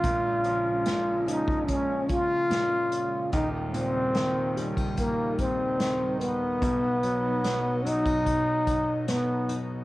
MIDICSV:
0, 0, Header, 1, 6, 480
1, 0, Start_track
1, 0, Tempo, 821918
1, 26, Time_signature, 4, 2, 24, 8
1, 5748, End_track
2, 0, Start_track
2, 0, Title_t, "Steel-string acoustic guitar"
2, 0, Program_c, 0, 25
2, 23, Note_on_c, 0, 46, 79
2, 26, Note_on_c, 0, 65, 62
2, 261, Note_on_c, 0, 61, 58
2, 502, Note_on_c, 0, 56, 55
2, 730, Note_off_c, 0, 61, 0
2, 737, Note_on_c, 0, 61, 48
2, 971, Note_off_c, 0, 56, 0
2, 978, Note_on_c, 0, 56, 50
2, 1210, Note_off_c, 0, 61, 0
2, 1217, Note_on_c, 0, 61, 56
2, 1451, Note_off_c, 0, 56, 0
2, 1458, Note_on_c, 0, 56, 62
2, 1694, Note_off_c, 0, 61, 0
2, 1701, Note_on_c, 0, 61, 54
2, 1939, Note_on_c, 0, 51, 71
2, 1941, Note_off_c, 0, 65, 0
2, 1943, Note_on_c, 0, 67, 66
2, 1944, Note_off_c, 0, 46, 0
2, 1990, Note_off_c, 0, 56, 0
2, 1992, Note_off_c, 0, 61, 0
2, 2187, Note_on_c, 0, 63, 55
2, 2426, Note_on_c, 0, 58, 58
2, 2666, Note_off_c, 0, 63, 0
2, 2669, Note_on_c, 0, 61, 55
2, 2787, Note_off_c, 0, 61, 0
2, 2787, Note_on_c, 0, 63, 44
2, 2898, Note_off_c, 0, 58, 0
2, 2905, Note_on_c, 0, 58, 57
2, 3141, Note_off_c, 0, 63, 0
2, 3148, Note_on_c, 0, 63, 57
2, 3385, Note_off_c, 0, 58, 0
2, 3622, Note_off_c, 0, 63, 0
2, 3624, Note_on_c, 0, 63, 58
2, 3864, Note_off_c, 0, 67, 0
2, 3866, Note_on_c, 0, 47, 81
2, 3870, Note_on_c, 0, 66, 70
2, 3983, Note_off_c, 0, 51, 0
2, 4105, Note_off_c, 0, 63, 0
2, 4107, Note_on_c, 0, 63, 58
2, 4348, Note_on_c, 0, 59, 59
2, 4585, Note_off_c, 0, 63, 0
2, 4587, Note_on_c, 0, 61, 58
2, 4708, Note_off_c, 0, 61, 0
2, 4708, Note_on_c, 0, 63, 48
2, 4820, Note_off_c, 0, 59, 0
2, 4827, Note_on_c, 0, 59, 59
2, 5057, Note_off_c, 0, 63, 0
2, 5064, Note_on_c, 0, 63, 57
2, 5299, Note_off_c, 0, 59, 0
2, 5306, Note_on_c, 0, 59, 56
2, 5535, Note_off_c, 0, 63, 0
2, 5542, Note_on_c, 0, 63, 60
2, 5748, Note_off_c, 0, 47, 0
2, 5748, Note_off_c, 0, 59, 0
2, 5748, Note_off_c, 0, 63, 0
2, 5748, Note_off_c, 0, 66, 0
2, 5748, End_track
3, 0, Start_track
3, 0, Title_t, "Trombone"
3, 0, Program_c, 1, 57
3, 0, Note_on_c, 1, 65, 94
3, 750, Note_on_c, 1, 63, 83
3, 758, Note_off_c, 1, 65, 0
3, 979, Note_on_c, 1, 61, 87
3, 988, Note_off_c, 1, 63, 0
3, 1224, Note_on_c, 1, 65, 106
3, 1233, Note_off_c, 1, 61, 0
3, 1943, Note_off_c, 1, 65, 0
3, 1946, Note_on_c, 1, 63, 85
3, 2040, Note_off_c, 1, 63, 0
3, 2179, Note_on_c, 1, 60, 96
3, 2721, Note_off_c, 1, 60, 0
3, 2904, Note_on_c, 1, 58, 77
3, 3153, Note_on_c, 1, 60, 84
3, 3162, Note_off_c, 1, 58, 0
3, 3618, Note_off_c, 1, 60, 0
3, 3622, Note_on_c, 1, 59, 92
3, 4588, Note_on_c, 1, 63, 97
3, 4597, Note_off_c, 1, 59, 0
3, 5304, Note_off_c, 1, 63, 0
3, 5308, Note_on_c, 1, 59, 76
3, 5607, Note_off_c, 1, 59, 0
3, 5748, End_track
4, 0, Start_track
4, 0, Title_t, "Analog synth pad"
4, 0, Program_c, 2, 89
4, 0, Note_on_c, 2, 56, 72
4, 20, Note_on_c, 2, 49, 79
4, 27, Note_on_c, 2, 61, 83
4, 1924, Note_off_c, 2, 56, 0
4, 1927, Note_off_c, 2, 61, 0
4, 1949, Note_on_c, 2, 55, 78
4, 1949, Note_on_c, 2, 63, 88
4, 3839, Note_off_c, 2, 49, 0
4, 3848, Note_off_c, 2, 55, 0
4, 3864, Note_on_c, 2, 47, 83
4, 3864, Note_on_c, 2, 54, 78
4, 5748, Note_off_c, 2, 47, 0
4, 5748, Note_off_c, 2, 54, 0
4, 5748, Note_off_c, 2, 63, 0
4, 5748, End_track
5, 0, Start_track
5, 0, Title_t, "Grand piano"
5, 0, Program_c, 3, 0
5, 0, Control_c, 3, 64, 127
5, 22, Note_on_c, 3, 46, 55
5, 24, Note_on_c, 3, 34, 52
5, 32, Control_c, 3, 64, 0
5, 144, Control_c, 3, 64, 127
5, 263, Note_on_c, 3, 53, 54
5, 495, Note_off_c, 3, 46, 0
5, 503, Note_on_c, 3, 46, 55
5, 734, Note_off_c, 3, 53, 0
5, 743, Note_on_c, 3, 53, 51
5, 1441, Note_off_c, 3, 46, 0
5, 1462, Note_on_c, 3, 46, 48
5, 1681, Note_off_c, 3, 53, 0
5, 1922, Note_off_c, 3, 34, 0
5, 1929, Note_off_c, 3, 46, 0
5, 1944, Note_on_c, 3, 27, 57
5, 1945, Note_on_c, 3, 39, 62
5, 1952, Control_c, 3, 64, 0
5, 2056, Control_c, 3, 64, 127
5, 2186, Note_on_c, 3, 46, 56
5, 2427, Note_on_c, 3, 51, 63
5, 2666, Note_on_c, 3, 55, 53
5, 3122, Note_off_c, 3, 46, 0
5, 3363, Note_off_c, 3, 51, 0
5, 3384, Note_on_c, 3, 51, 49
5, 3602, Note_off_c, 3, 55, 0
5, 3841, Note_off_c, 3, 27, 0
5, 3842, Note_off_c, 3, 39, 0
5, 3850, Note_off_c, 3, 51, 0
5, 3864, Note_on_c, 3, 47, 62
5, 3866, Note_on_c, 3, 35, 55
5, 3872, Control_c, 3, 64, 0
5, 3981, Control_c, 3, 64, 127
5, 4107, Note_on_c, 3, 54, 49
5, 4337, Note_off_c, 3, 47, 0
5, 4345, Note_on_c, 3, 47, 58
5, 4577, Note_off_c, 3, 54, 0
5, 4586, Note_on_c, 3, 54, 52
5, 5282, Note_off_c, 3, 47, 0
5, 5306, Note_on_c, 3, 47, 56
5, 5522, Note_off_c, 3, 54, 0
5, 5748, Note_off_c, 3, 35, 0
5, 5748, Note_off_c, 3, 47, 0
5, 5748, End_track
6, 0, Start_track
6, 0, Title_t, "Drums"
6, 22, Note_on_c, 9, 42, 75
6, 23, Note_on_c, 9, 36, 97
6, 80, Note_off_c, 9, 42, 0
6, 81, Note_off_c, 9, 36, 0
6, 258, Note_on_c, 9, 42, 52
6, 316, Note_off_c, 9, 42, 0
6, 500, Note_on_c, 9, 42, 78
6, 505, Note_on_c, 9, 38, 94
6, 558, Note_off_c, 9, 42, 0
6, 564, Note_off_c, 9, 38, 0
6, 747, Note_on_c, 9, 42, 71
6, 806, Note_off_c, 9, 42, 0
6, 862, Note_on_c, 9, 36, 91
6, 921, Note_off_c, 9, 36, 0
6, 982, Note_on_c, 9, 42, 77
6, 985, Note_on_c, 9, 36, 76
6, 1041, Note_off_c, 9, 42, 0
6, 1043, Note_off_c, 9, 36, 0
6, 1221, Note_on_c, 9, 42, 71
6, 1224, Note_on_c, 9, 36, 74
6, 1279, Note_off_c, 9, 42, 0
6, 1282, Note_off_c, 9, 36, 0
6, 1464, Note_on_c, 9, 42, 80
6, 1468, Note_on_c, 9, 38, 100
6, 1523, Note_off_c, 9, 42, 0
6, 1526, Note_off_c, 9, 38, 0
6, 1704, Note_on_c, 9, 42, 66
6, 1763, Note_off_c, 9, 42, 0
6, 1942, Note_on_c, 9, 42, 88
6, 1945, Note_on_c, 9, 36, 93
6, 2001, Note_off_c, 9, 42, 0
6, 2003, Note_off_c, 9, 36, 0
6, 2183, Note_on_c, 9, 42, 59
6, 2242, Note_off_c, 9, 42, 0
6, 2421, Note_on_c, 9, 42, 72
6, 2426, Note_on_c, 9, 38, 92
6, 2479, Note_off_c, 9, 42, 0
6, 2485, Note_off_c, 9, 38, 0
6, 2669, Note_on_c, 9, 42, 70
6, 2727, Note_off_c, 9, 42, 0
6, 2785, Note_on_c, 9, 36, 80
6, 2843, Note_off_c, 9, 36, 0
6, 2903, Note_on_c, 9, 42, 72
6, 2906, Note_on_c, 9, 36, 73
6, 2961, Note_off_c, 9, 42, 0
6, 2965, Note_off_c, 9, 36, 0
6, 3144, Note_on_c, 9, 42, 70
6, 3146, Note_on_c, 9, 36, 78
6, 3203, Note_off_c, 9, 42, 0
6, 3204, Note_off_c, 9, 36, 0
6, 3385, Note_on_c, 9, 42, 83
6, 3388, Note_on_c, 9, 38, 104
6, 3444, Note_off_c, 9, 42, 0
6, 3447, Note_off_c, 9, 38, 0
6, 3626, Note_on_c, 9, 42, 71
6, 3685, Note_off_c, 9, 42, 0
6, 3866, Note_on_c, 9, 36, 99
6, 3866, Note_on_c, 9, 42, 80
6, 3924, Note_off_c, 9, 36, 0
6, 3925, Note_off_c, 9, 42, 0
6, 4105, Note_on_c, 9, 42, 57
6, 4164, Note_off_c, 9, 42, 0
6, 4345, Note_on_c, 9, 42, 74
6, 4351, Note_on_c, 9, 38, 96
6, 4404, Note_off_c, 9, 42, 0
6, 4409, Note_off_c, 9, 38, 0
6, 4591, Note_on_c, 9, 42, 74
6, 4650, Note_off_c, 9, 42, 0
6, 4705, Note_on_c, 9, 36, 84
6, 4763, Note_off_c, 9, 36, 0
6, 4826, Note_on_c, 9, 36, 73
6, 4826, Note_on_c, 9, 42, 81
6, 4884, Note_off_c, 9, 36, 0
6, 4884, Note_off_c, 9, 42, 0
6, 5064, Note_on_c, 9, 36, 85
6, 5064, Note_on_c, 9, 42, 66
6, 5122, Note_off_c, 9, 42, 0
6, 5123, Note_off_c, 9, 36, 0
6, 5303, Note_on_c, 9, 42, 87
6, 5306, Note_on_c, 9, 38, 102
6, 5361, Note_off_c, 9, 42, 0
6, 5364, Note_off_c, 9, 38, 0
6, 5542, Note_on_c, 9, 42, 71
6, 5601, Note_off_c, 9, 42, 0
6, 5748, End_track
0, 0, End_of_file